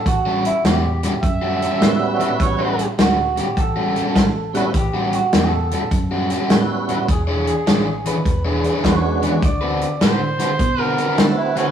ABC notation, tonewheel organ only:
X:1
M:4/4
L:1/8
Q:"Swing" 1/4=102
K:Amix
V:1 name="Tonewheel organ"
z6 [G,B,CEF]2 | [G,B,CEF] z6 [G,B,CEF] | z6 [G,B,CEF]2 | z6 [^G,B,CDF]2 |
z6 [A,B,=CEF]2 |]